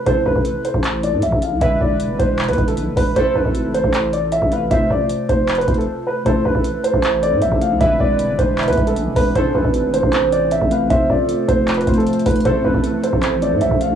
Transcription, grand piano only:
0, 0, Header, 1, 2, 480
1, 0, Start_track
1, 0, Key_signature, 0, "minor"
1, 0, Tempo, 387097
1, 81, Time_signature, 4, 2, 24, 8
1, 17299, End_track
2, 0, Start_track
2, 0, Title_t, "Grand piano"
2, 0, Program_c, 0, 0
2, 79, Note_on_c, 0, 72, 97
2, 307, Note_off_c, 0, 72, 0
2, 321, Note_on_c, 0, 71, 82
2, 772, Note_off_c, 0, 71, 0
2, 802, Note_on_c, 0, 72, 75
2, 1253, Note_off_c, 0, 72, 0
2, 1281, Note_on_c, 0, 74, 86
2, 1508, Note_off_c, 0, 74, 0
2, 1523, Note_on_c, 0, 76, 73
2, 1749, Note_off_c, 0, 76, 0
2, 1763, Note_on_c, 0, 77, 78
2, 1989, Note_off_c, 0, 77, 0
2, 2002, Note_on_c, 0, 76, 98
2, 2229, Note_off_c, 0, 76, 0
2, 2242, Note_on_c, 0, 74, 87
2, 2692, Note_off_c, 0, 74, 0
2, 2719, Note_on_c, 0, 72, 84
2, 3058, Note_off_c, 0, 72, 0
2, 3082, Note_on_c, 0, 71, 78
2, 3309, Note_off_c, 0, 71, 0
2, 3319, Note_on_c, 0, 69, 86
2, 3658, Note_off_c, 0, 69, 0
2, 3678, Note_on_c, 0, 71, 81
2, 3907, Note_off_c, 0, 71, 0
2, 3923, Note_on_c, 0, 72, 105
2, 4149, Note_off_c, 0, 72, 0
2, 4158, Note_on_c, 0, 71, 78
2, 4610, Note_off_c, 0, 71, 0
2, 4642, Note_on_c, 0, 72, 83
2, 5093, Note_off_c, 0, 72, 0
2, 5121, Note_on_c, 0, 74, 82
2, 5348, Note_off_c, 0, 74, 0
2, 5361, Note_on_c, 0, 76, 80
2, 5588, Note_off_c, 0, 76, 0
2, 5601, Note_on_c, 0, 77, 81
2, 5828, Note_off_c, 0, 77, 0
2, 5839, Note_on_c, 0, 76, 100
2, 6067, Note_off_c, 0, 76, 0
2, 6086, Note_on_c, 0, 74, 81
2, 6535, Note_off_c, 0, 74, 0
2, 6561, Note_on_c, 0, 72, 88
2, 6899, Note_off_c, 0, 72, 0
2, 6921, Note_on_c, 0, 71, 74
2, 7148, Note_off_c, 0, 71, 0
2, 7163, Note_on_c, 0, 69, 84
2, 7501, Note_off_c, 0, 69, 0
2, 7522, Note_on_c, 0, 71, 76
2, 7749, Note_off_c, 0, 71, 0
2, 7759, Note_on_c, 0, 72, 98
2, 7987, Note_off_c, 0, 72, 0
2, 8000, Note_on_c, 0, 71, 81
2, 8451, Note_off_c, 0, 71, 0
2, 8481, Note_on_c, 0, 72, 76
2, 8932, Note_off_c, 0, 72, 0
2, 8961, Note_on_c, 0, 74, 87
2, 9188, Note_off_c, 0, 74, 0
2, 9201, Note_on_c, 0, 76, 76
2, 9428, Note_off_c, 0, 76, 0
2, 9441, Note_on_c, 0, 77, 79
2, 9668, Note_off_c, 0, 77, 0
2, 9681, Note_on_c, 0, 76, 101
2, 9908, Note_off_c, 0, 76, 0
2, 9922, Note_on_c, 0, 74, 93
2, 10372, Note_off_c, 0, 74, 0
2, 10398, Note_on_c, 0, 72, 86
2, 10738, Note_off_c, 0, 72, 0
2, 10761, Note_on_c, 0, 71, 80
2, 10989, Note_off_c, 0, 71, 0
2, 11000, Note_on_c, 0, 69, 89
2, 11339, Note_off_c, 0, 69, 0
2, 11359, Note_on_c, 0, 71, 84
2, 11587, Note_off_c, 0, 71, 0
2, 11604, Note_on_c, 0, 72, 105
2, 11830, Note_off_c, 0, 72, 0
2, 11838, Note_on_c, 0, 71, 80
2, 12290, Note_off_c, 0, 71, 0
2, 12322, Note_on_c, 0, 72, 81
2, 12772, Note_off_c, 0, 72, 0
2, 12800, Note_on_c, 0, 74, 87
2, 13028, Note_off_c, 0, 74, 0
2, 13042, Note_on_c, 0, 76, 78
2, 13269, Note_off_c, 0, 76, 0
2, 13280, Note_on_c, 0, 77, 82
2, 13508, Note_off_c, 0, 77, 0
2, 13519, Note_on_c, 0, 76, 99
2, 13747, Note_off_c, 0, 76, 0
2, 13765, Note_on_c, 0, 74, 84
2, 14214, Note_off_c, 0, 74, 0
2, 14240, Note_on_c, 0, 72, 91
2, 14579, Note_off_c, 0, 72, 0
2, 14600, Note_on_c, 0, 71, 78
2, 14828, Note_off_c, 0, 71, 0
2, 14845, Note_on_c, 0, 69, 89
2, 15181, Note_off_c, 0, 69, 0
2, 15202, Note_on_c, 0, 71, 77
2, 15429, Note_off_c, 0, 71, 0
2, 15440, Note_on_c, 0, 72, 102
2, 15668, Note_off_c, 0, 72, 0
2, 15681, Note_on_c, 0, 71, 79
2, 16132, Note_off_c, 0, 71, 0
2, 16162, Note_on_c, 0, 72, 77
2, 16613, Note_off_c, 0, 72, 0
2, 16642, Note_on_c, 0, 74, 86
2, 16869, Note_off_c, 0, 74, 0
2, 16882, Note_on_c, 0, 76, 77
2, 17109, Note_off_c, 0, 76, 0
2, 17122, Note_on_c, 0, 77, 80
2, 17299, Note_off_c, 0, 77, 0
2, 17299, End_track
0, 0, End_of_file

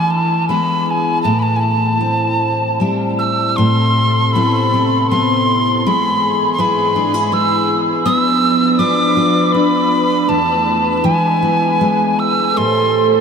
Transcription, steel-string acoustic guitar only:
0, 0, Header, 1, 2, 480
1, 0, Start_track
1, 0, Key_signature, 0, "minor"
1, 0, Tempo, 757576
1, 772, Time_signature, 3, 2, 24, 8
1, 1258, Tempo, 779221
1, 3178, Tempo, 738007
1, 6058, Tempo, 761421
1, 8375, End_track
2, 0, Start_track
2, 0, Title_t, "Steel-string acoustic guitar"
2, 0, Program_c, 0, 25
2, 0, Note_on_c, 0, 52, 68
2, 0, Note_on_c, 0, 64, 55
2, 311, Note_on_c, 0, 56, 50
2, 316, Note_on_c, 0, 59, 48
2, 317, Note_off_c, 0, 64, 0
2, 320, Note_on_c, 0, 64, 46
2, 789, Note_on_c, 0, 45, 62
2, 790, Note_off_c, 0, 64, 0
2, 793, Note_on_c, 0, 64, 53
2, 829, Note_off_c, 0, 56, 0
2, 831, Note_off_c, 0, 59, 0
2, 1270, Note_on_c, 0, 60, 47
2, 1759, Note_on_c, 0, 55, 45
2, 1764, Note_off_c, 0, 60, 0
2, 1764, Note_off_c, 0, 64, 0
2, 1766, Note_on_c, 0, 60, 38
2, 1767, Note_on_c, 0, 64, 49
2, 2028, Note_off_c, 0, 52, 0
2, 2233, Note_off_c, 0, 45, 0
2, 2240, Note_on_c, 0, 45, 66
2, 2288, Note_off_c, 0, 55, 0
2, 2717, Note_off_c, 0, 60, 0
2, 2717, Note_on_c, 0, 59, 50
2, 2720, Note_on_c, 0, 60, 50
2, 2721, Note_off_c, 0, 64, 0
2, 2724, Note_on_c, 0, 64, 52
2, 2944, Note_off_c, 0, 60, 0
2, 2952, Note_on_c, 0, 60, 49
2, 3183, Note_off_c, 0, 59, 0
2, 3186, Note_on_c, 0, 59, 51
2, 3672, Note_off_c, 0, 45, 0
2, 3674, Note_on_c, 0, 56, 71
2, 3721, Note_off_c, 0, 60, 0
2, 4139, Note_off_c, 0, 59, 0
2, 4142, Note_on_c, 0, 59, 60
2, 4146, Note_off_c, 0, 64, 0
2, 4146, Note_on_c, 0, 64, 49
2, 4149, Note_on_c, 0, 68, 65
2, 4382, Note_off_c, 0, 64, 0
2, 4385, Note_on_c, 0, 62, 54
2, 4503, Note_off_c, 0, 62, 0
2, 4503, Note_on_c, 0, 64, 48
2, 4619, Note_off_c, 0, 59, 0
2, 4621, Note_on_c, 0, 59, 57
2, 5096, Note_off_c, 0, 56, 0
2, 5098, Note_off_c, 0, 59, 0
2, 5098, Note_on_c, 0, 59, 77
2, 5144, Note_off_c, 0, 64, 0
2, 5145, Note_off_c, 0, 68, 0
2, 5576, Note_on_c, 0, 62, 60
2, 5579, Note_on_c, 0, 65, 57
2, 5583, Note_on_c, 0, 71, 66
2, 5813, Note_off_c, 0, 65, 0
2, 5821, Note_on_c, 0, 65, 57
2, 6059, Note_off_c, 0, 62, 0
2, 6066, Note_on_c, 0, 62, 54
2, 6535, Note_on_c, 0, 40, 65
2, 6585, Note_off_c, 0, 62, 0
2, 6585, Note_off_c, 0, 65, 0
2, 7006, Note_off_c, 0, 59, 0
2, 7009, Note_on_c, 0, 52, 69
2, 7058, Note_off_c, 0, 40, 0
2, 7252, Note_on_c, 0, 59, 51
2, 7495, Note_on_c, 0, 56, 48
2, 7804, Note_off_c, 0, 71, 0
2, 7975, Note_on_c, 0, 45, 68
2, 8024, Note_off_c, 0, 59, 0
2, 8026, Note_off_c, 0, 56, 0
2, 8375, Note_off_c, 0, 45, 0
2, 8375, Note_off_c, 0, 52, 0
2, 8375, End_track
0, 0, End_of_file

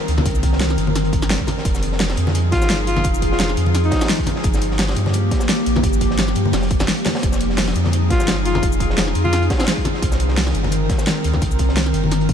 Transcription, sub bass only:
0, 0, Header, 1, 2, 480
1, 0, Start_track
1, 0, Key_signature, -4, "minor"
1, 0, Tempo, 348837
1, 352, Time_signature, 4, 2, 24, 8
1, 16972, End_track
2, 0, Start_track
2, 0, Title_t, "Sub bass"
2, 0, Program_c, 0, 38
2, 111, Note_on_c, 0, 38, 83
2, 329, Note_off_c, 0, 38, 0
2, 353, Note_on_c, 0, 36, 98
2, 1054, Note_off_c, 0, 36, 0
2, 1072, Note_on_c, 0, 31, 88
2, 1534, Note_off_c, 0, 31, 0
2, 1550, Note_on_c, 0, 31, 102
2, 1668, Note_off_c, 0, 31, 0
2, 1683, Note_on_c, 0, 31, 83
2, 1896, Note_off_c, 0, 31, 0
2, 2272, Note_on_c, 0, 29, 99
2, 2974, Note_off_c, 0, 29, 0
2, 2990, Note_on_c, 0, 41, 88
2, 3472, Note_on_c, 0, 31, 81
2, 3492, Note_off_c, 0, 41, 0
2, 4174, Note_off_c, 0, 31, 0
2, 4191, Note_on_c, 0, 29, 95
2, 4894, Note_off_c, 0, 29, 0
2, 4912, Note_on_c, 0, 41, 88
2, 5374, Note_off_c, 0, 41, 0
2, 6112, Note_on_c, 0, 31, 100
2, 6814, Note_off_c, 0, 31, 0
2, 6831, Note_on_c, 0, 43, 89
2, 7294, Note_off_c, 0, 43, 0
2, 7793, Note_on_c, 0, 34, 81
2, 8010, Note_off_c, 0, 34, 0
2, 8029, Note_on_c, 0, 31, 97
2, 8732, Note_off_c, 0, 31, 0
2, 8753, Note_on_c, 0, 43, 87
2, 8983, Note_off_c, 0, 43, 0
2, 8991, Note_on_c, 0, 29, 103
2, 9454, Note_off_c, 0, 29, 0
2, 9951, Note_on_c, 0, 29, 99
2, 10654, Note_off_c, 0, 29, 0
2, 10673, Note_on_c, 0, 41, 87
2, 11150, Note_on_c, 0, 31, 84
2, 11171, Note_off_c, 0, 41, 0
2, 11853, Note_off_c, 0, 31, 0
2, 11873, Note_on_c, 0, 29, 99
2, 12575, Note_off_c, 0, 29, 0
2, 12594, Note_on_c, 0, 41, 88
2, 13055, Note_off_c, 0, 41, 0
2, 13791, Note_on_c, 0, 36, 99
2, 14494, Note_off_c, 0, 36, 0
2, 14511, Note_on_c, 0, 31, 88
2, 14974, Note_off_c, 0, 31, 0
2, 15473, Note_on_c, 0, 38, 84
2, 15690, Note_off_c, 0, 38, 0
2, 15712, Note_on_c, 0, 36, 98
2, 16414, Note_off_c, 0, 36, 0
2, 16433, Note_on_c, 0, 31, 88
2, 16895, Note_off_c, 0, 31, 0
2, 16912, Note_on_c, 0, 31, 102
2, 16972, Note_off_c, 0, 31, 0
2, 16972, End_track
0, 0, End_of_file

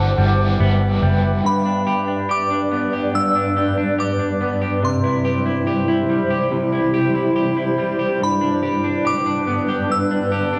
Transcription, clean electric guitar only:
0, 0, Header, 1, 2, 480
1, 0, Start_track
1, 0, Key_signature, 1, "major"
1, 0, Tempo, 845070
1, 821, Time_signature, 4, 2, 24, 8
1, 6018, End_track
2, 0, Start_track
2, 0, Title_t, "Clean electric guitar"
2, 0, Program_c, 0, 27
2, 0, Note_on_c, 0, 50, 79
2, 102, Note_on_c, 0, 55, 57
2, 343, Note_on_c, 0, 59, 65
2, 580, Note_off_c, 0, 55, 0
2, 583, Note_on_c, 0, 55, 57
2, 819, Note_on_c, 0, 43, 69
2, 891, Note_off_c, 0, 50, 0
2, 939, Note_off_c, 0, 59, 0
2, 941, Note_on_c, 0, 62, 48
2, 1061, Note_on_c, 0, 67, 52
2, 1174, Note_off_c, 0, 62, 0
2, 1180, Note_on_c, 0, 62, 51
2, 1299, Note_off_c, 0, 67, 0
2, 1302, Note_on_c, 0, 67, 61
2, 1416, Note_off_c, 0, 62, 0
2, 1423, Note_on_c, 0, 62, 51
2, 1540, Note_off_c, 0, 55, 0
2, 1542, Note_on_c, 0, 59, 56
2, 1663, Note_off_c, 0, 67, 0
2, 1666, Note_on_c, 0, 67, 52
2, 1778, Note_off_c, 0, 43, 0
2, 1784, Note_on_c, 0, 43, 74
2, 1897, Note_off_c, 0, 62, 0
2, 1904, Note_on_c, 0, 62, 52
2, 2022, Note_off_c, 0, 67, 0
2, 2024, Note_on_c, 0, 67, 50
2, 2137, Note_off_c, 0, 62, 0
2, 2143, Note_on_c, 0, 62, 51
2, 2260, Note_off_c, 0, 67, 0
2, 2262, Note_on_c, 0, 67, 57
2, 2374, Note_off_c, 0, 62, 0
2, 2381, Note_on_c, 0, 62, 42
2, 2497, Note_off_c, 0, 59, 0
2, 2504, Note_on_c, 0, 59, 53
2, 2619, Note_off_c, 0, 67, 0
2, 2621, Note_on_c, 0, 67, 52
2, 2741, Note_on_c, 0, 48, 68
2, 2789, Note_off_c, 0, 62, 0
2, 2790, Note_off_c, 0, 59, 0
2, 2791, Note_off_c, 0, 43, 0
2, 2860, Note_on_c, 0, 64, 50
2, 2978, Note_off_c, 0, 67, 0
2, 2980, Note_on_c, 0, 67, 53
2, 3092, Note_off_c, 0, 64, 0
2, 3099, Note_on_c, 0, 64, 51
2, 3217, Note_off_c, 0, 67, 0
2, 3219, Note_on_c, 0, 67, 57
2, 3334, Note_off_c, 0, 64, 0
2, 3341, Note_on_c, 0, 64, 56
2, 3463, Note_on_c, 0, 55, 57
2, 3578, Note_off_c, 0, 67, 0
2, 3581, Note_on_c, 0, 67, 55
2, 3693, Note_off_c, 0, 48, 0
2, 3700, Note_on_c, 0, 48, 67
2, 3813, Note_off_c, 0, 64, 0
2, 3819, Note_on_c, 0, 64, 50
2, 3939, Note_off_c, 0, 67, 0
2, 3941, Note_on_c, 0, 67, 57
2, 4051, Note_off_c, 0, 64, 0
2, 4058, Note_on_c, 0, 64, 48
2, 4177, Note_off_c, 0, 67, 0
2, 4179, Note_on_c, 0, 67, 60
2, 4292, Note_off_c, 0, 64, 0
2, 4298, Note_on_c, 0, 64, 42
2, 4417, Note_off_c, 0, 55, 0
2, 4419, Note_on_c, 0, 55, 54
2, 4537, Note_off_c, 0, 67, 0
2, 4539, Note_on_c, 0, 67, 53
2, 4660, Note_on_c, 0, 43, 70
2, 4708, Note_off_c, 0, 48, 0
2, 4708, Note_off_c, 0, 64, 0
2, 4777, Note_on_c, 0, 62, 50
2, 4897, Note_off_c, 0, 67, 0
2, 4900, Note_on_c, 0, 67, 56
2, 5013, Note_off_c, 0, 62, 0
2, 5020, Note_on_c, 0, 62, 51
2, 5137, Note_off_c, 0, 67, 0
2, 5139, Note_on_c, 0, 67, 61
2, 5253, Note_off_c, 0, 62, 0
2, 5260, Note_on_c, 0, 62, 57
2, 5378, Note_off_c, 0, 55, 0
2, 5380, Note_on_c, 0, 59, 55
2, 5498, Note_off_c, 0, 67, 0
2, 5501, Note_on_c, 0, 67, 60
2, 5614, Note_off_c, 0, 43, 0
2, 5620, Note_on_c, 0, 43, 69
2, 5736, Note_off_c, 0, 62, 0
2, 5743, Note_on_c, 0, 62, 53
2, 5859, Note_off_c, 0, 67, 0
2, 5861, Note_on_c, 0, 67, 55
2, 5973, Note_off_c, 0, 62, 0
2, 5980, Note_on_c, 0, 62, 52
2, 6018, Note_off_c, 0, 43, 0
2, 6018, Note_off_c, 0, 59, 0
2, 6018, Note_off_c, 0, 62, 0
2, 6018, Note_off_c, 0, 67, 0
2, 6018, End_track
0, 0, End_of_file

